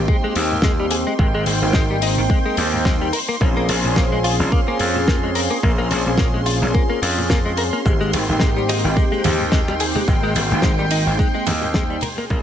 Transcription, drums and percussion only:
0.08 kick loud
0.35 open hi-hat loud
0.62 kick loud
0.62 snare loud
0.91 open hi-hat loud
1.19 kick loud
1.46 open hi-hat loud
1.73 kick loud
1.73 snare loud
2.02 open hi-hat loud
2.30 kick loud
2.57 open hi-hat loud
2.85 kick loud
2.85 snare loud
3.13 open hi-hat loud
3.41 kick loud
3.69 open hi-hat loud
3.96 kick loud
3.96 snare loud
4.24 open hi-hat loud
4.52 kick loud
4.79 open hi-hat loud
5.08 kick loud
5.08 snare loud
5.35 open hi-hat loud
5.63 kick loud
5.91 open hi-hat loud
6.18 kick loud
6.18 snare loud
6.46 open hi-hat loud
6.75 kick loud
7.03 open hi-hat loud
7.30 kick loud
7.30 snare loud
7.57 open hi-hat loud
7.86 kick loud
7.86 shaker medium
8.01 shaker soft
8.13 open hi-hat loud
8.13 ride medium
8.13 shaker medium
8.29 shaker soft
8.40 kick loud
8.40 snare loud
8.40 shaker medium
8.57 shaker soft
8.69 open hi-hat loud
8.69 ride medium
8.69 high bongo medium
8.69 shaker loud
8.84 shaker soft
8.97 kick loud
8.97 shaker medium
9.13 shaker soft
9.24 open hi-hat loud
9.24 ride medium
9.24 low conga medium
9.24 shaker medium
9.40 shaker soft
9.52 kick loud
9.52 snare loud
9.52 shaker medium
9.68 high bongo medium
9.68 shaker soft
9.80 open hi-hat loud
9.80 ride medium
9.80 shaker loud
9.95 high bongo soft
9.95 high conga medium
9.95 shaker soft
10.07 kick loud
10.07 shaker medium
10.24 shaker soft
10.35 open hi-hat loud
10.35 ride medium
10.35 shaker loud
10.51 shaker soft
10.62 kick loud
10.62 snare loud
10.62 shaker medium
10.78 shaker soft
10.90 open hi-hat loud
10.90 ride medium
10.90 shaker loud
11.07 shaker soft
11.19 kick loud
11.19 shaker medium
11.34 shaker soft
11.46 open hi-hat loud
11.46 ride medium
11.46 low conga medium
11.46 shaker loud
11.61 high bongo soft
11.61 shaker soft
11.74 kick loud
11.74 snare loud
11.74 shaker medium
11.90 shaker soft
12.01 open hi-hat loud
12.01 ride medium
12.01 high conga medium
12.01 shaker loud
12.18 high bongo soft
12.18 shaker soft
12.29 kick loud
12.29 shaker medium

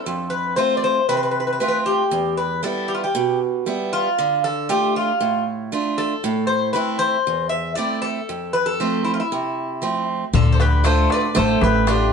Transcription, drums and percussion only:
10.34 darbuka dum medium
10.60 darbuka tek medium
10.72 darbuka tek soft
10.85 darbuka tek medium
11.10 darbuka tek medium
11.36 darbuka tek medium
11.62 darbuka tek medium
11.74 darbuka tek soft
11.87 darbuka tek medium

